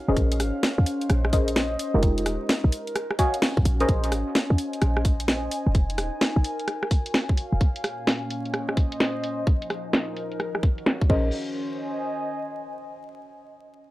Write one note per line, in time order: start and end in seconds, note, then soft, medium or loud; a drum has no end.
0.00 1.79 C#4 medium
0.00 0.17 F#4 medium
0.00 0.83 F5 medium
0.08 0.15 D#1 medium
0.08 1.31 C#4 medium
0.08 1.31 G#4 medium
0.08 1.31 A#4 medium
0.08 1.31 C5 medium
0.08 1.31 D#5 medium
0.17 0.41 A#1 loud
0.17 kick loud
0.17 closed hi-hat medium
0.32 closed hi-hat medium
0.40 0.52 G#1 loud
0.40 2.26 C5 medium
0.40 cross-stick medium
0.40 open hi-hat loud
0.63 snare loud
0.63 closed hi-hat medium
0.78 0.85 D#2 medium
0.85 2.26 D#5 loud
0.85 open hi-hat loud
1.01 closed hi-hat soft
1.10 1.77 A#1 medium
1.10 cross-stick medium
1.10 closed hi-hat medium
1.25 cross-stick medium
1.33 1.49 C#4 medium
1.33 1.49 G#4 medium
1.33 1.49 A#4 medium
1.33 1.49 C5 medium
1.33 1.49 D#5 medium
1.33 kick loud
1.33 open hi-hat loud
1.48 closed hi-hat medium
1.56 snare loud
1.56 closed hi-hat medium
1.79 3.36 D#4 medium
1.79 open hi-hat loud
1.94 2.27 F1 medium
1.94 2.95 G#3 medium
1.94 2.95 D#4 medium
1.94 2.95 F4 medium
1.94 2.95 G4 medium
1.94 2.95 A#4 medium
2.03 kick loud
2.03 closed hi-hat medium
2.18 closed hi-hat medium
2.26 2.38 D#1 loud
2.26 cross-stick medium
2.26 open hi-hat loud
2.33 3.36 A#4 medium
2.49 snare loud
2.49 closed hi-hat medium
2.64 2.71 A#1 medium
2.72 open hi-hat loud
2.87 closed hi-hat soft
2.95 5.51 C#4 medium
2.95 cross-stick medium
2.95 closed hi-hat medium
3.03 3.89 F#4 medium
3.11 cross-stick medium
3.19 3.35 F#4 medium
3.19 3.35 C#5 medium
3.19 3.35 D#5 medium
3.19 3.35 F5 medium
3.19 3.35 G#5 medium
3.19 kick loud
3.19 open hi-hat loud
3.34 closed hi-hat medium
3.39 4.55 F5 medium
3.39 11.10 G#5 medium
3.39 snare loud
3.39 closed hi-hat medium
3.57 3.64 D#2 medium
3.57 kick loud
3.65 3.85 A#1 loud
3.65 open hi-hat loud
3.80 4.12 C#4 medium
3.80 4.12 G#4 medium
3.80 4.12 A#4 medium
3.80 4.12 C5 medium
3.80 4.12 D#5 medium
3.80 closed hi-hat soft
3.89 4.13 A#1 loud
3.89 kick loud
3.89 closed hi-hat medium
4.04 closed hi-hat medium
4.12 4.24 G#1 loud
4.12 5.98 C5 medium
4.12 5.98 D#5 medium
4.12 cross-stick medium
4.12 open hi-hat loud
4.35 snare loud
4.35 closed hi-hat medium
4.50 4.57 D#2 medium
4.58 open hi-hat loud
4.73 closed hi-hat soft
4.82 5.49 A#1 medium
4.82 cross-stick medium
4.82 closed hi-hat medium
4.97 cross-stick medium
5.05 kick loud
5.05 open hi-hat loud
5.20 closed hi-hat medium
5.28 snare loud
5.28 closed hi-hat medium
5.51 7.08 D#4 medium
5.51 open hi-hat loud
5.67 5.99 F1 medium
5.75 kick loud
5.75 closed hi-hat medium
5.90 closed hi-hat medium
5.98 6.10 D#1 loud
5.98 cross-stick medium
5.98 open hi-hat loud
6.05 7.08 A#4 medium
6.21 snare loud
6.21 closed hi-hat medium
6.36 6.43 A#1 medium
6.44 open hi-hat loud
6.60 closed hi-hat soft
6.68 7.61 F#4 medium
6.68 cross-stick medium
6.68 closed hi-hat medium
6.83 cross-stick medium
6.91 kick loud
6.91 open hi-hat loud
6.99 8.27 F5 medium
7.06 closed hi-hat medium
7.14 snare loud
7.14 closed hi-hat medium
7.29 kick loud
7.37 open hi-hat loud
7.52 7.59 D#1 medium
7.61 9.24 A#2 medium
7.61 kick loud
7.61 closed hi-hat medium
7.76 closed hi-hat medium
7.80 9.24 C#4 medium
7.80 cross-stick medium
7.80 open hi-hat loud
8.07 snare loud
8.07 closed hi-hat medium
8.30 open hi-hat medium
8.35 9.70 C5 medium
8.35 9.70 D#5 medium
8.46 closed hi-hat soft
8.54 cross-stick medium
8.54 closed hi-hat medium
8.69 cross-stick medium
8.77 kick loud
8.77 open hi-hat loud
8.92 closed hi-hat medium
9.00 snare loud
9.00 closed hi-hat medium
9.24 10.40 F3 medium
9.24 open hi-hat loud
9.41 10.80 D#4 medium
9.47 kick loud
9.47 closed hi-hat medium
9.62 closed hi-hat medium
9.70 cross-stick medium
9.70 open hi-hat loud
9.78 10.80 A#4 medium
9.93 snare loud
9.93 closed hi-hat medium
10.17 open hi-hat medium
10.32 closed hi-hat soft
10.40 11.10 D#3 medium
10.40 cross-stick medium
10.40 closed hi-hat medium
10.55 cross-stick medium
10.63 kick loud
10.63 open hi-hat loud
10.78 closed hi-hat medium
10.86 snare loud
10.86 closed hi-hat medium
11.01 kick loud
11.10 11.31 A#1 loud
11.10 12.92 C#4 medium
11.10 11.28 C#4 medium
11.10 11.28 G#4 medium
11.10 11.28 A#4 medium
11.10 11.28 C5 medium
11.10 11.28 D#5 medium
11.10 kick loud
11.10 crash medium
11.19 12.92 C5 medium
11.49 13.15 D#5 medium
11.55 13.15 G#5 medium